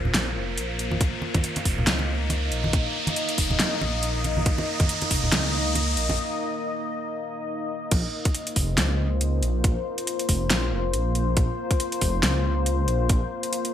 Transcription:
0.00 0.16 F1 medium
0.00 7.88 A#3 medium
0.00 0.97 F4 medium
0.00 0.99 C5 medium
0.00 riser medium
0.05 low conga medium
0.14 0.38 A#1 medium
0.14 snare loud
0.14 closed hi-hat medium
0.36 0.59 F1 medium
0.58 1.00 A#1 loud
0.58 closed hi-hat medium
0.79 closed hi-hat medium
0.91 high conga medium
1.01 1.12 A#1 loud
1.01 7.88 D#4 medium
1.01 7.90 D#5 medium
1.01 kick loud
1.01 closed hi-hat medium
1.22 muted conga soft
1.34 kick loud
1.34 closed hi-hat soft
1.34 high conga medium
1.44 closed hi-hat medium
1.56 closed hi-hat soft
1.56 muted conga medium
1.65 1.88 F1 medium
1.65 kick medium
1.65 open hi-hat medium
1.78 low conga medium
1.87 2.51 C#2 loud
1.87 snare loud
1.87 closed hi-hat medium
1.99 muted conga soft
2.30 closed hi-hat medium
2.30 muted conga medium
2.52 2.72 A#1 loud
2.52 closed hi-hat soft
2.64 high conga medium
2.73 2.85 A#1 loud
2.73 kick loud
2.73 closed hi-hat medium
2.73 muted conga medium
3.07 closed hi-hat soft
3.07 muted conga medium
3.07 high conga medium
3.16 closed hi-hat medium
3.29 closed hi-hat medium
3.38 3.58 F1 medium
3.38 kick medium
3.38 open hi-hat medium
3.50 muted conga medium
3.50 low conga medium
3.60 snare loud
3.60 closed hi-hat medium
3.81 4.45 A#1 medium
3.81 muted conga medium
4.03 closed hi-hat medium
4.24 closed hi-hat soft
4.24 muted conga medium
4.37 high conga medium
4.46 4.57 A#1 loud
4.46 kick loud
4.46 closed hi-hat medium
4.58 muted conga medium
4.80 kick loud
4.80 closed hi-hat medium
4.80 high conga medium
4.89 closed hi-hat medium
5.02 closed hi-hat medium
5.02 muted conga medium
5.11 5.34 F1 medium
5.11 kick medium
5.11 open hi-hat medium
5.24 low conga medium
5.32 5.96 C#2 loud
5.32 snare loud
5.32 closed hi-hat medium
5.32 muted conga medium
5.75 closed hi-hat medium
5.75 muted conga medium
5.97 6.17 A#1 loud
5.97 closed hi-hat medium
6.09 muted conga medium
6.09 high conga medium
7.91 8.03 A#1 loud
7.91 13.74 A#3 medium
7.91 13.74 F4 medium
7.91 13.74 C5 medium
7.91 kick loud
7.91 closed hi-hat medium
7.91 crash loud
8.25 kick loud
8.25 closed hi-hat medium
8.35 closed hi-hat medium
8.47 closed hi-hat medium
8.56 8.79 F1 medium
8.56 kick medium
8.56 open hi-hat loud
8.78 9.41 C#2 loud
8.78 snare loud
8.78 closed hi-hat medium
9.21 closed hi-hat medium
9.43 9.63 A#1 loud
9.43 closed hi-hat medium
9.64 9.75 A#1 loud
9.64 kick loud
9.64 closed hi-hat medium
9.98 closed hi-hat medium
10.07 closed hi-hat medium
10.19 closed hi-hat medium
10.29 10.52 F1 medium
10.29 kick medium
10.29 open hi-hat loud
10.50 10.73 A#1 medium
10.50 snare loud
10.50 closed hi-hat medium
10.72 10.95 F1 medium
10.94 11.36 A#1 loud
10.94 closed hi-hat medium
11.15 closed hi-hat medium
11.37 11.48 A#1 loud
11.37 kick loud
11.37 closed hi-hat medium
11.71 kick loud
11.71 closed hi-hat medium
11.80 closed hi-hat medium
11.92 closed hi-hat medium
12.01 12.25 F1 medium
12.01 kick medium
12.01 open hi-hat medium
12.23 12.87 C#2 loud
12.23 snare loud
12.23 closed hi-hat medium
12.66 closed hi-hat medium
12.88 13.08 A#1 loud
12.88 closed hi-hat medium
13.09 13.21 A#1 loud
13.09 kick loud
13.09 closed hi-hat medium
13.43 closed hi-hat medium
13.53 closed hi-hat medium
13.65 closed hi-hat medium

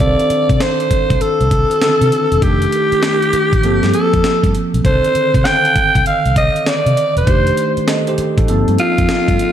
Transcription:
0.00 0.14 C2 medium
0.00 1.78 C4 medium
0.00 1.78 D4 medium
0.00 1.79 A4 medium
0.00 0.19 C5 medium
0.00 0.63 D5 medium
0.00 0.18 F5 medium
0.00 kick loud
0.00 closed hi-hat medium
0.05 1.81 D#3 medium
0.19 closed hi-hat medium
0.30 muted fingered electric bass stroke soft
0.30 closed hi-hat medium
0.49 0.58 C3 loud
0.49 kick loud
0.49 closed hi-hat medium
0.60 1.23 C5 medium
0.60 snare loud
0.60 closed hi-hat medium
0.80 closed hi-hat soft
0.91 muted fingered electric bass stroke soft
0.91 kick medium
0.91 closed hi-hat medium
1.10 1.18 C2 medium
1.10 kick medium
1.10 closed hi-hat medium
1.21 2.45 A4 medium
1.21 muted fingered electric bass stroke soft
1.21 closed hi-hat medium
1.41 1.63 C2 medium
1.41 closed hi-hat soft
1.51 kick medium
1.51 closed hi-hat medium
1.71 closed hi-hat medium
1.82 1.90 D3 soft
1.82 2.42 C4 soft
1.82 2.42 D4 soft
1.82 2.43 A4 medium
1.82 snare loud
1.82 closed hi-hat medium
1.88 2.40 D#3 soft
2.01 2.09 C3 medium
2.01 closed hi-hat medium
2.12 closed hi-hat medium
2.32 2.40 E1 medium
2.32 closed hi-hat soft
2.41 2.65 F1 medium
2.41 3.61 D#3 medium
2.41 3.61 A3 medium
2.41 3.61 D4 medium
2.41 3.94 G4 loud
2.41 3.62 G4 medium
2.41 kick loud
2.41 closed hi-hat medium
2.62 closed hi-hat medium
2.72 closed hi-hat medium
2.92 muted fingered electric bass stroke soft
2.92 closed hi-hat soft
3.03 snare loud
3.03 closed hi-hat medium
3.22 closed hi-hat soft
3.33 muted fingered electric bass stroke soft
3.33 closed hi-hat medium
3.53 3.61 A1 medium
3.53 kick medium
3.53 closed hi-hat medium
3.63 3.78 G1 medium
3.63 4.82 F3 medium
3.63 4.82 A#3 medium
3.63 4.83 C4 medium
3.63 4.83 A4 medium
3.63 closed hi-hat medium
3.83 3.91 G2 loud
3.83 snare medium
3.83 closed hi-hat soft
3.94 4.55 A4 medium
3.94 closed hi-hat medium
4.13 4.22 F2 medium
4.13 kick medium
4.13 closed hi-hat medium
4.24 snare loud
4.24 closed hi-hat medium
4.43 4.52 G2 medium
4.43 kick medium
4.43 closed hi-hat medium
4.55 closed hi-hat medium
4.74 4.82 B1 medium
4.74 closed hi-hat medium
4.84 4.99 C2 medium
4.84 7.24 D3 medium
4.84 7.23 D#3 medium
4.84 7.23 C4 medium
4.84 7.24 A4 medium
4.84 5.47 C5 loud
4.84 kick loud
4.84 closed hi-hat medium
5.04 closed hi-hat medium
5.15 muted fingered electric bass stroke soft
5.15 closed hi-hat medium
5.34 5.42 C3 loud
5.34 kick medium
5.34 closed hi-hat medium
5.45 6.06 G5 loud
5.45 snare loud
5.45 closed hi-hat medium
5.65 closed hi-hat soft
5.76 muted fingered electric bass stroke soft
5.76 kick medium
5.76 closed hi-hat medium
5.95 6.03 C2 medium
5.95 kick medium
5.95 closed hi-hat medium
6.06 6.34 F5 medium
6.06 closed hi-hat medium
6.26 6.48 C2 medium
6.26 closed hi-hat soft
6.36 6.69 D#5 medium
6.36 kick medium
6.36 closed hi-hat medium
6.56 closed hi-hat medium
6.66 7.17 D5 medium
6.66 snare loud
6.66 closed hi-hat medium
6.86 6.94 C3 medium
6.86 closed hi-hat medium
6.97 closed hi-hat medium
7.16 7.24 E1 medium
7.16 7.74 C5 medium
7.16 closed hi-hat medium
7.27 7.50 F1 loud
7.27 8.46 D#3 medium
7.27 8.46 A3 medium
7.27 7.87 D4 medium
7.27 7.87 G4 medium
7.27 kick loud
7.27 closed hi-hat medium
7.47 closed hi-hat medium
7.57 closed hi-hat medium
7.77 muted fingered electric bass stroke soft
7.77 closed hi-hat medium
7.88 8.07 A4 medium
7.88 8.07 D#5 medium
7.88 snare loud
7.88 closed hi-hat medium
8.07 8.37 G4 medium
8.07 8.36 C5 medium
8.07 closed hi-hat medium
8.18 muted fingered electric bass stroke soft
8.18 closed hi-hat medium
8.38 8.46 A1 medium
8.38 8.67 D#4 medium
8.38 8.49 A4 medium
8.38 kick medium
8.38 closed hi-hat medium
8.47 8.63 G1 medium
8.47 9.52 F3 medium
8.47 9.52 A#3 medium
8.47 9.52 C4 medium
8.47 9.52 A4 medium
8.47 closed hi-hat medium
8.68 8.76 G2 loud
8.68 closed hi-hat soft
8.78 9.52 F4 loud
8.78 closed hi-hat medium
8.98 9.06 F2 medium
8.98 kick loud
8.98 closed hi-hat medium
9.09 snare loud
9.09 closed hi-hat medium
9.28 9.36 G2 medium
9.28 kick medium
9.28 closed hi-hat medium
9.39 closed hi-hat medium

